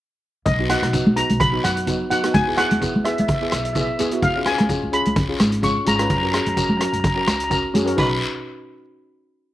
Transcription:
0.46 B1 D#5, kick, closed hi-hat, long guiro
0.59 B3 D#4 F#4
0.69 B3 D#4 F#4 F#5, cross-stick, closed hi-hat
0.82 B1, cross-stick, closed hi-hat
0.93 B3 D#4 F#4, kick, closed hi-hat, short guiro
1.06 B1
1.16 B3 D#4 F#4 A#5, closed hi-hat
1.29 B1, closed hi-hat
1.40 B5, kick, closed hi-hat, long guiro
1.52 B3 D#4 F#4
1.64 F#2 F#5, cross-stick, closed hi-hat, short guiro
1.77 closed hi-hat
1.86 B3 D#4 F#4, kick, closed hi-hat, short guiro
2.10 F#2 B3 D#4 F#4 F#5, closed hi-hat, short guiro
2.23 B3 D#4 F#4, cross-stick, closed hi-hat
2.34 E2 G#5, kick, closed hi-hat, long guiro
2.47 B3 E4 G#4
2.57 B3 E4 G#4 F#5, cross-stick, closed hi-hat
2.71 E2, closed hi-hat
2.81 B3 E4 G#4, kick, closed hi-hat, short guiro
2.95 E2
3.04 B3 E4 G#4 E5, cross-stick, closed hi-hat
3.13 E5
3.18 E2 E5, closed hi-hat
3.28 E5, kick, closed hi-hat, long guiro
3.34 E5
3.41 B3 E4 G#4 E5
3.50 B1 E5, cross-stick, closed hi-hat, short guiro
3.58 E5
3.65 E5, closed hi-hat
3.73 B3 E4 G#4 E5, kick, closed hi-hat, short guiro
3.81 E5
3.99 D#2 B3 E4 G#4, closed hi-hat, short guiro
4.11 B3 E4 F#4, closed hi-hat
4.22 C#2 F5, kick, closed hi-hat, long guiro
4.36 C#4 F4 G#4
4.46 C#4 F4 G#4 G#5, cross-stick, closed hi-hat
4.58 C#2, cross-stick, closed hi-hat
4.68 C#4 F4 G#4, kick, closed hi-hat, short guiro
4.83 C#2
4.92 C#4 F4 G#4 B5, closed hi-hat
5.05 C#2, closed hi-hat
5.16 kick, closed hi-hat, long guiro
5.28 C#4 F4 G#4
5.40 G#1, cross-stick, closed hi-hat, short guiro
5.52 closed hi-hat
5.62 C#4 F4 G#4 C#6, kick, closed hi-hat, short guiro
5.85 G#1 C#4 F4 G#4 A#5, closed hi-hat, short guiro
5.96 C#4 F4 A#5, cross-stick, closed hi-hat
6.00 B4 A#5
6.10 F#2 A#5, kick, closed hi-hat, long guiro
6.18 A#5
6.22 C#4 F#4 A#4 A#5
6.32 C#4 F#4 G#4 A#5, cross-stick, closed hi-hat
6.41 A#5
6.46 F#2 A#5, closed hi-hat
6.55 C#4 F#4 A#4 A#5, kick, closed hi-hat, short guiro
6.63 A#5
6.69 F#2 A#5
6.77 C#4 F#4 A#4 A#5, cross-stick, closed hi-hat
6.85 A#5
6.93 F#2 A#5, closed hi-hat
7.00 A#5
7.04 A#5, kick, closed hi-hat, long guiro
7.15 C#4 F#4 A#4 A#5
7.21 A#5
7.27 C#2 A#5, cross-stick, closed hi-hat, short guiro
7.36 A#5
7.40 closed hi-hat
7.44 A#5
7.50 C#4 F#4 A#4 A#5, kick, closed hi-hat, short guiro
7.74 F#2 C#4 F#4 G#4, closed hi-hat, short guiro
7.84 C#4 F#4 A#4, closed hi-hat
7.97 B1 D#4 F#4 B4 B5, kick, splash, long guiro

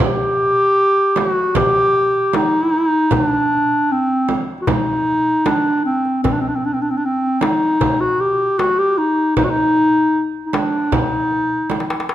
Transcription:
0.00 G4, darbuka dum
1.16 G4, darbuka tek, frame drum
1.30 F#4
1.55 G4, frame drum, darbuka dum
1.96 darbuka ka
2.33 D#4, darbuka tek, frame drum
2.54 darbuka ka
2.74 darbuka ka
2.93 darbuka ka
3.11 D#4, frame drum, darbuka dum
3.24 D4
3.92 C4
4.29 frame drum
4.61 F#4
4.67 D#4, darbuka dum, frame drum
5.07 darbuka ka
5.46 D4, darbuka tek, frame drum
5.66 darbuka ka
5.85 C4, darbuka ka
6.05 darbuka ka
6.24 C4, frame drum, darbuka dum
6.32 D4
6.41 C4
6.48 D4
6.55 C4
6.65 D4
6.73 C4
6.81 D4
6.90 C4
6.97 D4
7.05 C4
7.41 D#4, darbuka tek, frame drum
7.81 darbuka dum, frame drum
8.01 F#4
8.20 G4, darbuka ka
8.58 F#4, darbuka tek, frame drum
8.79 G4
8.98 D#4, darbuka ka
9.18 darbuka ka
9.37 D#4, frame drum, darbuka dum
9.44 F#4
9.50 D#4
9.76 darbuka ka
10.15 darbuka ka
10.46 D#4
10.53 D4, darbuka tek, frame drum
10.92 D#4, frame drum, darbuka dum
11.31 darbuka ka
11.70 darbuka tek, frame drum
11.80 darbuka ka
11.90 darbuka tek
12.00 darbuka ka
12.09 darbuka tek

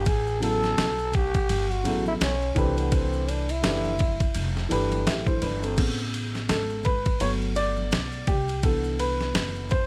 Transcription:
0.05 A1 G#4, kick, ride, maracas
0.27 maracas
0.40 C#3 F#3 B3 E4 A4, ride, maracas
0.63 snare, maracas
0.78 B1, snare, hi-hat pedal, ride, low conga, maracas
0.99 maracas
1.12 G4, kick, ride, low conga, maracas
1.34 kick, ride, maracas
1.49 G1, ride, high conga, maracas
1.71 F#4, maracas
1.84 A1 C#3 F#3 B3 E4 A4, ride, maracas
2.06 E4, high conga, maracas
2.21 B1 C#4, snare, hi-hat pedal, ride, maracas
2.42 maracas
2.55 C2 E3 A3 C4 D4 G4 B4, kick, ride, low conga, maracas
2.77 B3, ride, maracas
2.92 C4, kick, ride, maracas
3.13 maracas
3.29 D4, ride, maracas
3.49 E4, ride, maracas
3.62 F#1 E3 A3 D4 G4 B4, snare, hi-hat pedal, ride, low conga, maracas
3.84 high conga, maracas
3.98 kick, ride, high conga, low conga, maracas
4.20 kick, ride, maracas
4.35 F1, ride, high conga, maracas
4.56 snare, maracas
4.69 G1 E3 A3 D4 G4 B4, ride, maracas
4.92 ride, high conga, maracas
5.06 A1 G4 E5, snare, hi-hat pedal, ride, maracas
5.27 E4 C5, kick, high conga, maracas
5.42 G1 D4 B4, ride, low conga, maracas
5.62 C4 A4, ride, maracas
5.77 A1 C#3 B3 G#4, kick, crash, ride, maracas
5.98 maracas
6.14 ride, maracas
6.35 snare, maracas
6.49 G#1 A4, snare, hi-hat pedal, ride, low conga, maracas
6.70 maracas
6.83 B4, kick, ride, low conga, maracas
7.05 kick, ride, maracas
7.20 G1 F#3 A3 B3 C#5, ride, high conga, maracas
7.41 maracas
7.55 D5, ride, maracas
7.76 high conga, maracas
7.92 B1, snare, hi-hat pedal, ride, maracas
8.12 maracas
8.27 C2 G4, kick, ride, low conga, maracas
8.48 ride, maracas
8.62 D3 E3 B3 A4, kick, ride, maracas
8.84 maracas
8.99 B4, ride, maracas
9.20 snare, maracas
9.34 F#1, snare, hi-hat pedal, ride, low conga, maracas
9.55 maracas
9.69 C5, kick, ride, low conga, maracas

